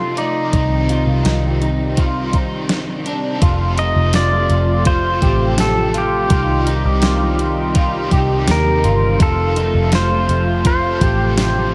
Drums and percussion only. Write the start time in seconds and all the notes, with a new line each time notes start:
0.17 closed hi-hat
0.53 kick, closed hi-hat
0.89 closed hi-hat
1.25 snare, closed hi-hat
1.62 closed hi-hat
1.97 kick, closed hi-hat
2.33 kick, closed hi-hat
2.69 snare, closed hi-hat
3.06 closed hi-hat
3.42 kick, closed hi-hat
3.78 closed hi-hat
4.13 snare, closed hi-hat, tambourine
4.50 closed hi-hat
4.85 kick, closed hi-hat
5.22 kick, closed hi-hat
5.58 snare, closed hi-hat, tambourine
5.94 closed hi-hat
6.30 kick, closed hi-hat
6.67 closed hi-hat
7.02 snare, closed hi-hat, tambourine
7.39 closed hi-hat
7.75 kick, closed hi-hat
8.11 kick, closed hi-hat
8.48 snare, closed hi-hat, tambourine
8.84 closed hi-hat
9.20 kick, closed hi-hat
9.56 closed hi-hat
9.92 snare, closed hi-hat, tambourine
10.29 closed hi-hat
10.65 kick, closed hi-hat
11.01 kick, closed hi-hat
11.38 snare, closed hi-hat, tambourine